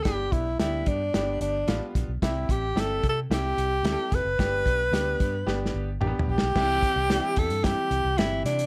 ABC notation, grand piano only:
X:1
M:4/4
L:1/16
Q:1/4=111
K:C
V:1 name="Grand piano"
[G,B,DG]3 z [G,B,DG]3 z [G,B,DG]3 z [G,B,DF]3 z | [G,CEG]3 z [G,CEG]3 z [G,CEG]3 z [G,CEGA]3 z | [G,B,DG]3 z [G,B,DG]3 z [G,B,DG]3 z [G,_B,=B,DG]3 z | [E,G,CEG]3 z [E,G,CDEG]3 z [E,G,CEG]3 z [E,G,CEG]3 z |]